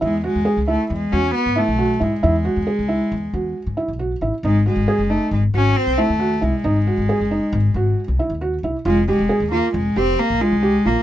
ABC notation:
X:1
M:5/4
L:1/16
Q:1/4=136
K:G#phr
V:1 name="Felt piano"
E2 F2 G2 E4 F4 E2 F2 E2 | E2 F2 G2 E4 F4 E2 F2 E2 | D2 F2 G2 D4 F4 E2 F2 E2 | D2 F2 G2 D4 F4 E2 F2 E2 |
=F2 =G2 _A2 F4 G4 F2 G2 F2 |]
V:2 name="Cello" clef=bass
G,2 G,4 A,2 G,2 C2 B,2 A,4 G,2- | G,12- G,2 z6 | G,2 G,4 A,2 G,2 C2 ^B,2 A,4 G,2- | G,12- G,2 z6 |
_A,2 A,4 ^A,2 _A,2 =C2 ^A,2 _A,4 ^A,2 |]
V:3 name="Upright bass" clef=bass
E,,3 E,, z C,,2 z E,,2 E,,2 z G,, z B,,,3 G,, z | E,,3 E,, z C,,2 z E,,2 E,,2 z G,, z B,,,3 A,,, z | G,,,3 G,,, z F,,,2 z G,,,2 G,,,2 z ^B,,, z D,,3 B,,, z | G,,,3 G,,, z F,,,2 z G,,,2 G,,,2 z ^B,,, z D,,3 B,,, z |
=F,,,3 F,,, z _E,,2 z F,,,2 F,,,2 z ^A,,, z =C,,3 A,,, z |]